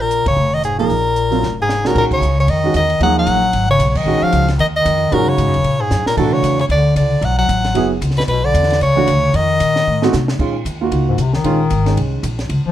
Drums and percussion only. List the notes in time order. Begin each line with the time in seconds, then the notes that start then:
0.11 closed hi-hat
0.26 kick, ride
0.64 closed hi-hat
0.79 open hi-hat
0.90 open hi-hat
1.16 closed hi-hat
1.32 open hi-hat
1.43 snare
1.69 snare
1.85 snare
1.95 kick, crash
2.11 kick, crash
2.22 hi-hat pedal
2.48 ride
2.74 hi-hat pedal, ride
2.90 ride
3.00 ride
3.27 hi-hat pedal, ride
3.53 ride
3.80 hi-hat pedal, ride
3.95 kick, crash
4.32 hi-hat pedal, ride
4.48 snare, ride
4.59 ride
4.86 hi-hat pedal, ride
5.12 ride
5.38 hi-hat pedal, ride
5.54 ride
5.64 ride
5.91 snare, hi-hat pedal
6.06 snare
6.17 kick, crash
6.44 hi-hat pedal, ride
6.59 ride
6.70 ride
6.96 hi-hat pedal, ride
7.22 ride
7.49 hi-hat pedal, ride
7.64 snare, ride
7.75 ride
8.02 hi-hat pedal, ride
8.11 snare
8.17 snare, ride
8.28 ride
8.55 hi-hat pedal, ride
8.63 snare
8.70 snare, ride
8.81 ride
9.07 hi-hat pedal, ride
9.34 ride
9.60 hi-hat pedal, ride
9.76 snare
10.02 snare
10.13 snare, hi-hat pedal
10.28 snare
10.39 kick, crash
10.66 hi-hat pedal, ride
10.92 ride
11.18 hi-hat pedal, ride
11.33 snare
11.44 ride
11.70 hi-hat pedal, ride
11.86 snare, ride
11.97 ride
12.23 hi-hat pedal, ride
12.39 snare, ride
12.50 ride